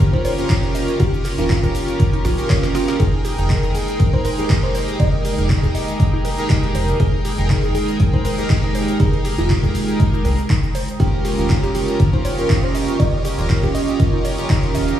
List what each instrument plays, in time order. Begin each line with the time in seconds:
Already playing: analog polysynth C#4 F4 G4 A#4
0.00 kick, closed hi-hat, shaker
0.13 synth arpeggio sound D#4, fm electric piano C5, kick, closed hi-hat
0.25 fm electric piano C5, synth arpeggio sound C#5, closed hi-hat, open hi-hat, shaker
0.38 analog polysynth C#4 F4 G4 A#4, closed hi-hat, shaker
0.50 synth arpeggio sound D#4, kick, snare, clap, closed hi-hat, shaker
0.63 snare, closed hi-hat
0.75 synth arpeggio sound D#5, closed hi-hat, open hi-hat, shaker
0.88 closed hi-hat, shaker
1.00 analog synth bass D#1, analog polysynth C#4 F4 G4 A#4, synth arpeggio sound D#4, fm electric piano G4, kick, closed hi-hat, shaker
1.14 shaker
1.25 synth arpeggio sound G4, clap, closed hi-hat, open hi-hat, shaker
1.38 analog synth bass D#1, analog polysynth C#4 F4 G4 A#4, fm electric piano F4, closed hi-hat, shaker
1.50 synth arpeggio sound D#4, kick, snare, clap, closed hi-hat, shaker
1.63 analog synth bass D#1, synth arpeggio sound A#4, kick, closed hi-hat, shaker
1.75 open hi-hat, shaker
1.88 closed hi-hat, shaker
2.00 kick, closed hi-hat, shaker
2.13 synth arpeggio sound D#4, closed hi-hat
2.25 analog synth bass A#1, synth arpeggio sound F4, snare, open hi-hat, shaker
2.38 analog polysynth C#4 F4 G4 A#4, closed hi-hat, shaker
2.50 synth arpeggio sound C#5, kick, snare, clap, closed hi-hat, shaker
2.63 synth arpeggio sound A#4, snare, closed hi-hat, shaker
2.75 synth arpeggio sound F4, snare, closed hi-hat, open hi-hat, shaker
2.88 snare, closed hi-hat, shaker
3.00 analog synth bass F1, ambient pad G#3 G5 A#5 D#6, analog polysynth D#4 G#4 A#4 G5, synth arpeggio sound D#4, fm electric piano G#4, kick, closed hi-hat, shaker
3.25 synth arpeggio sound G4, snare, closed hi-hat, open hi-hat, shaker
3.38 analog synth bass F1, analog polysynth D#4 G#4 A#4 G5, closed hi-hat, shaker
3.50 synth arpeggio sound D#4, kick, snare, clap, closed hi-hat, shaker
3.63 analog synth bass F1, synth arpeggio sound G#4, snare, closed hi-hat, shaker
3.75 fm electric piano G#4, closed hi-hat, open hi-hat, shaker
3.88 snare, closed hi-hat, shaker
4.00 analog synth bass A#1, kick, closed hi-hat, shaker
4.13 synth arpeggio sound D#4, fm electric piano C5, kick, closed hi-hat
4.25 synth arpeggio sound A#4, fm electric piano C5, closed hi-hat, open hi-hat, shaker
4.38 analog polysynth D#4 G4 G#4 A#4, closed hi-hat, shaker
4.50 synth arpeggio sound D#4, kick, snare, clap, closed hi-hat, shaker
4.63 fm electric piano C5, snare, closed hi-hat
4.75 synth arpeggio sound C5, closed hi-hat, open hi-hat, shaker
4.88 closed hi-hat, shaker
5.00 analog synth bass F1, analog polysynth D#4 G4 G#4 A#4, synth arpeggio sound D#4, fm electric piano D#5, kick, closed hi-hat, shaker
5.25 synth arpeggio sound G4, closed hi-hat, open hi-hat, shaker
5.38 analog synth bass F1, analog polysynth D#4 G4 G#4 A#4, closed hi-hat, shaker
5.50 synth arpeggio sound D#4, kick, snare, clap, closed hi-hat, shaker
5.63 analog synth bass F1, synth arpeggio sound G#4, kick, closed hi-hat, shaker
5.75 fm electric piano D#5, open hi-hat, shaker
5.88 closed hi-hat, shaker
6.00 kick, closed hi-hat, shaker
6.13 synth arpeggio sound D#4
6.25 synth arpeggio sound A#4, closed hi-hat, open hi-hat, shaker
6.38 analog polysynth D#4 G4 G#4 A#4, closed hi-hat, shaker
6.50 synth arpeggio sound D#4, kick, snare, clap, closed hi-hat, shaker
6.63 closed hi-hat
6.75 analog synth bass F1, synth arpeggio sound C5, closed hi-hat, open hi-hat, shaker
6.88 closed hi-hat, shaker
7.00 analog synth bass F1, analog polysynth D#4 G#4 A#4 G5, synth arpeggio sound D#4, fm electric piano G#4, kick, closed hi-hat, shaker
7.25 synth arpeggio sound G4, snare, closed hi-hat, open hi-hat, shaker
7.38 analog synth bass F1, analog polysynth D#4 G#4 A#4 G5, closed hi-hat, shaker
7.50 synth arpeggio sound D#4, kick, snare, clap, closed hi-hat, shaker
7.63 analog synth bass F1, synth arpeggio sound G#4, snare, closed hi-hat, shaker
7.75 fm electric piano G#4, closed hi-hat, open hi-hat, shaker
7.88 snare, closed hi-hat, shaker
8.00 analog synth bass A#1, kick, closed hi-hat, shaker
8.13 synth arpeggio sound D#4, fm electric piano C5, kick, closed hi-hat
8.25 synth arpeggio sound A#4, fm electric piano C5, closed hi-hat, open hi-hat, shaker
8.38 analog polysynth D#4 G4 G#4 A#4, closed hi-hat, shaker
8.50 synth arpeggio sound D#4, kick, snare, clap, closed hi-hat, shaker
8.63 snare, closed hi-hat
8.75 synth arpeggio sound C5, closed hi-hat, open hi-hat, shaker
8.88 closed hi-hat, shaker
9.00 analog synth bass F1, analog polysynth D#4 G4 G#4 A#4, synth arpeggio sound D#4, fm electric piano G#4, kick, closed hi-hat, shaker
9.13 closed hi-hat
9.25 synth arpeggio sound G4, closed hi-hat, open hi-hat, shaker
9.38 analog synth bass F1, analog polysynth D#4 G4 G#4 A#4, fm electric piano F4, shaker
9.50 synth arpeggio sound D#4, kick, snare, clap, closed hi-hat, shaker
9.63 analog synth bass F1, synth arpeggio sound G#4, kick, closed hi-hat, shaker
9.75 open hi-hat, shaker
9.88 closed hi-hat, shaker
10.00 kick, closed hi-hat, shaker
10.13 synth arpeggio sound D#4, shaker
10.25 analog synth bass C2, synth arpeggio sound A#4, closed hi-hat, open hi-hat, shaker
10.38 closed hi-hat, shaker
10.50 synth arpeggio sound D#4, kick, snare, clap, closed hi-hat, shaker
10.63 closed hi-hat, shaker
10.75 synth arpeggio sound C5, closed hi-hat, open hi-hat, shaker
10.88 closed hi-hat, shaker
11.00 analog synth bass D#1, analog polysynth C#4 F4 G4 A#4, synth arpeggio sound D#4, fm electric piano G4, ambient pad G4 F5 C#6 D#6, kick, closed hi-hat, shaker
11.25 synth arpeggio sound G4, snare, closed hi-hat, open hi-hat, shaker
11.38 analog synth bass D#1, analog polysynth C#4 F4 G4 A#4, closed hi-hat, shaker
11.50 synth arpeggio sound D#4, kick, snare, clap, closed hi-hat, shaker
11.63 analog synth bass D#1, synth arpeggio sound G4, snare, closed hi-hat, shaker
11.75 fm electric piano G4, closed hi-hat, open hi-hat, shaker
11.88 snare, closed hi-hat, shaker
12.00 analog synth bass G1, kick, closed hi-hat, shaker
12.13 synth arpeggio sound D#4, fm electric piano C5, kick, closed hi-hat
12.25 fm electric piano C5, synth arpeggio sound C#5, closed hi-hat, open hi-hat, shaker
12.38 analog polysynth C#4 F4 G4 A#4, closed hi-hat, shaker
12.50 synth arpeggio sound D#4, kick, snare, clap, closed hi-hat, shaker
12.63 fm electric piano C5, snare, closed hi-hat
12.75 synth arpeggio sound D#5, closed hi-hat, open hi-hat, shaker
12.88 closed hi-hat, shaker
12.99 analog synth bass D#1, analog polysynth C#4 F4 G4 A#4, synth arpeggio sound D#4, fm electric piano D#5, kick, closed hi-hat, shaker
13.25 synth arpeggio sound G4, closed hi-hat, open hi-hat, shaker
13.38 analog synth bass D#1, analog polysynth C#4 F4 G4 A#4, closed hi-hat, shaker
13.50 synth arpeggio sound D#4, kick, snare, clap, closed hi-hat, shaker
13.63 analog synth bass D#1, synth arpeggio sound G4, kick, closed hi-hat, shaker
13.75 fm electric piano D#5, open hi-hat, shaker
13.88 closed hi-hat, shaker
14.00 kick, closed hi-hat, shaker
14.13 synth arpeggio sound D#4
14.25 synth arpeggio sound C#5, closed hi-hat, open hi-hat, shaker
14.38 analog polysynth C#4 F4 G4 A#4, closed hi-hat, shaker
14.50 synth arpeggio sound D#4, kick, snare, clap, closed hi-hat, shaker
14.63 closed hi-hat
14.75 analog synth bass D#1, synth arpeggio sound D#5, closed hi-hat, open hi-hat, shaker
14.88 closed hi-hat, shaker